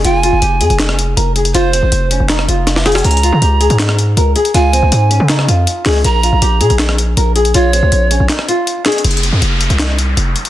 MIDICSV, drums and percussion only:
0, 0, Header, 1, 2, 480
1, 0, Start_track
1, 0, Key_signature, -4, "minor"
1, 0, Tempo, 375000
1, 56, Time_signature, 4, 2, 24, 8
1, 13432, End_track
2, 0, Start_track
2, 0, Title_t, "Drums"
2, 58, Note_on_c, 9, 42, 87
2, 186, Note_off_c, 9, 42, 0
2, 300, Note_on_c, 9, 42, 83
2, 428, Note_off_c, 9, 42, 0
2, 537, Note_on_c, 9, 42, 85
2, 665, Note_off_c, 9, 42, 0
2, 777, Note_on_c, 9, 42, 73
2, 897, Note_off_c, 9, 42, 0
2, 897, Note_on_c, 9, 42, 44
2, 1016, Note_on_c, 9, 39, 93
2, 1018, Note_on_c, 9, 38, 118
2, 1025, Note_off_c, 9, 42, 0
2, 1025, Note_on_c, 9, 42, 88
2, 1138, Note_on_c, 9, 37, 101
2, 1144, Note_off_c, 9, 39, 0
2, 1146, Note_off_c, 9, 38, 0
2, 1153, Note_off_c, 9, 42, 0
2, 1263, Note_on_c, 9, 42, 77
2, 1266, Note_off_c, 9, 37, 0
2, 1391, Note_off_c, 9, 42, 0
2, 1501, Note_on_c, 9, 42, 84
2, 1629, Note_off_c, 9, 42, 0
2, 1737, Note_on_c, 9, 42, 63
2, 1857, Note_off_c, 9, 42, 0
2, 1857, Note_on_c, 9, 42, 62
2, 1978, Note_off_c, 9, 42, 0
2, 1978, Note_on_c, 9, 42, 87
2, 2106, Note_off_c, 9, 42, 0
2, 2220, Note_on_c, 9, 42, 86
2, 2348, Note_off_c, 9, 42, 0
2, 2457, Note_on_c, 9, 42, 95
2, 2585, Note_off_c, 9, 42, 0
2, 2699, Note_on_c, 9, 42, 72
2, 2827, Note_off_c, 9, 42, 0
2, 2935, Note_on_c, 9, 39, 95
2, 2937, Note_on_c, 9, 38, 118
2, 2944, Note_on_c, 9, 42, 85
2, 3057, Note_on_c, 9, 37, 100
2, 3063, Note_off_c, 9, 39, 0
2, 3065, Note_off_c, 9, 38, 0
2, 3072, Note_off_c, 9, 42, 0
2, 3182, Note_on_c, 9, 42, 72
2, 3185, Note_off_c, 9, 37, 0
2, 3310, Note_off_c, 9, 42, 0
2, 3416, Note_on_c, 9, 38, 60
2, 3420, Note_on_c, 9, 42, 83
2, 3537, Note_off_c, 9, 38, 0
2, 3537, Note_on_c, 9, 38, 71
2, 3548, Note_off_c, 9, 42, 0
2, 3657, Note_off_c, 9, 38, 0
2, 3657, Note_on_c, 9, 38, 103
2, 3657, Note_on_c, 9, 42, 62
2, 3657, Note_on_c, 9, 46, 80
2, 3737, Note_off_c, 9, 42, 0
2, 3737, Note_on_c, 9, 42, 62
2, 3778, Note_off_c, 9, 38, 0
2, 3778, Note_on_c, 9, 38, 99
2, 3785, Note_off_c, 9, 46, 0
2, 3818, Note_off_c, 9, 42, 0
2, 3818, Note_on_c, 9, 42, 61
2, 3897, Note_off_c, 9, 42, 0
2, 3897, Note_on_c, 9, 42, 61
2, 3906, Note_off_c, 9, 38, 0
2, 3977, Note_off_c, 9, 42, 0
2, 3977, Note_on_c, 9, 42, 60
2, 4057, Note_off_c, 9, 42, 0
2, 4057, Note_on_c, 9, 42, 61
2, 4140, Note_off_c, 9, 42, 0
2, 4140, Note_on_c, 9, 42, 81
2, 4268, Note_off_c, 9, 42, 0
2, 4376, Note_on_c, 9, 42, 87
2, 4504, Note_off_c, 9, 42, 0
2, 4616, Note_on_c, 9, 42, 72
2, 4737, Note_off_c, 9, 42, 0
2, 4737, Note_on_c, 9, 42, 45
2, 4855, Note_on_c, 9, 39, 92
2, 4857, Note_on_c, 9, 38, 118
2, 4864, Note_off_c, 9, 42, 0
2, 4864, Note_on_c, 9, 42, 85
2, 4977, Note_on_c, 9, 37, 104
2, 4983, Note_off_c, 9, 39, 0
2, 4985, Note_off_c, 9, 38, 0
2, 4992, Note_off_c, 9, 42, 0
2, 5101, Note_on_c, 9, 42, 74
2, 5105, Note_off_c, 9, 37, 0
2, 5229, Note_off_c, 9, 42, 0
2, 5339, Note_on_c, 9, 42, 82
2, 5467, Note_off_c, 9, 42, 0
2, 5576, Note_on_c, 9, 42, 64
2, 5696, Note_off_c, 9, 42, 0
2, 5696, Note_on_c, 9, 42, 59
2, 5817, Note_off_c, 9, 42, 0
2, 5817, Note_on_c, 9, 42, 87
2, 5945, Note_off_c, 9, 42, 0
2, 6060, Note_on_c, 9, 42, 83
2, 6188, Note_off_c, 9, 42, 0
2, 6297, Note_on_c, 9, 42, 94
2, 6425, Note_off_c, 9, 42, 0
2, 6538, Note_on_c, 9, 42, 73
2, 6666, Note_off_c, 9, 42, 0
2, 6775, Note_on_c, 9, 39, 97
2, 6777, Note_on_c, 9, 38, 120
2, 6784, Note_on_c, 9, 42, 84
2, 6897, Note_on_c, 9, 37, 103
2, 6903, Note_off_c, 9, 39, 0
2, 6905, Note_off_c, 9, 38, 0
2, 6912, Note_off_c, 9, 42, 0
2, 7021, Note_on_c, 9, 42, 70
2, 7025, Note_off_c, 9, 37, 0
2, 7149, Note_off_c, 9, 42, 0
2, 7260, Note_on_c, 9, 42, 82
2, 7388, Note_off_c, 9, 42, 0
2, 7495, Note_on_c, 9, 39, 79
2, 7496, Note_on_c, 9, 46, 79
2, 7497, Note_on_c, 9, 38, 98
2, 7623, Note_off_c, 9, 39, 0
2, 7624, Note_off_c, 9, 46, 0
2, 7625, Note_off_c, 9, 38, 0
2, 7737, Note_on_c, 9, 42, 88
2, 7865, Note_off_c, 9, 42, 0
2, 7980, Note_on_c, 9, 42, 84
2, 8108, Note_off_c, 9, 42, 0
2, 8217, Note_on_c, 9, 42, 85
2, 8345, Note_off_c, 9, 42, 0
2, 8457, Note_on_c, 9, 42, 76
2, 8576, Note_off_c, 9, 42, 0
2, 8576, Note_on_c, 9, 42, 43
2, 8694, Note_on_c, 9, 39, 92
2, 8696, Note_on_c, 9, 38, 119
2, 8703, Note_off_c, 9, 42, 0
2, 8703, Note_on_c, 9, 42, 88
2, 8817, Note_on_c, 9, 37, 100
2, 8822, Note_off_c, 9, 39, 0
2, 8824, Note_off_c, 9, 38, 0
2, 8831, Note_off_c, 9, 42, 0
2, 8940, Note_on_c, 9, 42, 80
2, 8945, Note_off_c, 9, 37, 0
2, 9068, Note_off_c, 9, 42, 0
2, 9179, Note_on_c, 9, 42, 82
2, 9307, Note_off_c, 9, 42, 0
2, 9416, Note_on_c, 9, 42, 64
2, 9536, Note_off_c, 9, 42, 0
2, 9536, Note_on_c, 9, 42, 61
2, 9656, Note_off_c, 9, 42, 0
2, 9656, Note_on_c, 9, 42, 88
2, 9784, Note_off_c, 9, 42, 0
2, 9899, Note_on_c, 9, 42, 83
2, 10027, Note_off_c, 9, 42, 0
2, 10137, Note_on_c, 9, 42, 95
2, 10265, Note_off_c, 9, 42, 0
2, 10378, Note_on_c, 9, 42, 74
2, 10506, Note_off_c, 9, 42, 0
2, 10615, Note_on_c, 9, 39, 93
2, 10617, Note_on_c, 9, 38, 119
2, 10624, Note_on_c, 9, 42, 83
2, 10736, Note_on_c, 9, 37, 99
2, 10743, Note_off_c, 9, 39, 0
2, 10745, Note_off_c, 9, 38, 0
2, 10752, Note_off_c, 9, 42, 0
2, 10861, Note_on_c, 9, 42, 70
2, 10864, Note_off_c, 9, 37, 0
2, 10989, Note_off_c, 9, 42, 0
2, 11100, Note_on_c, 9, 42, 80
2, 11228, Note_off_c, 9, 42, 0
2, 11335, Note_on_c, 9, 39, 79
2, 11336, Note_on_c, 9, 42, 63
2, 11336, Note_on_c, 9, 46, 80
2, 11337, Note_on_c, 9, 38, 100
2, 11416, Note_off_c, 9, 42, 0
2, 11416, Note_on_c, 9, 42, 62
2, 11463, Note_off_c, 9, 39, 0
2, 11464, Note_off_c, 9, 46, 0
2, 11465, Note_off_c, 9, 38, 0
2, 11497, Note_off_c, 9, 42, 0
2, 11497, Note_on_c, 9, 42, 60
2, 11577, Note_off_c, 9, 42, 0
2, 11577, Note_on_c, 9, 42, 81
2, 11657, Note_off_c, 9, 42, 0
2, 11657, Note_on_c, 9, 42, 58
2, 11737, Note_off_c, 9, 42, 0
2, 11737, Note_on_c, 9, 42, 58
2, 11820, Note_off_c, 9, 42, 0
2, 11820, Note_on_c, 9, 42, 81
2, 11948, Note_off_c, 9, 42, 0
2, 12056, Note_on_c, 9, 42, 83
2, 12184, Note_off_c, 9, 42, 0
2, 12296, Note_on_c, 9, 42, 69
2, 12417, Note_off_c, 9, 42, 0
2, 12417, Note_on_c, 9, 42, 43
2, 12535, Note_on_c, 9, 39, 93
2, 12537, Note_on_c, 9, 38, 110
2, 12544, Note_off_c, 9, 42, 0
2, 12544, Note_on_c, 9, 42, 84
2, 12663, Note_off_c, 9, 39, 0
2, 12665, Note_off_c, 9, 38, 0
2, 12672, Note_off_c, 9, 42, 0
2, 12781, Note_on_c, 9, 42, 75
2, 12909, Note_off_c, 9, 42, 0
2, 13020, Note_on_c, 9, 42, 82
2, 13148, Note_off_c, 9, 42, 0
2, 13257, Note_on_c, 9, 42, 61
2, 13377, Note_off_c, 9, 42, 0
2, 13377, Note_on_c, 9, 42, 58
2, 13432, Note_off_c, 9, 42, 0
2, 13432, End_track
0, 0, End_of_file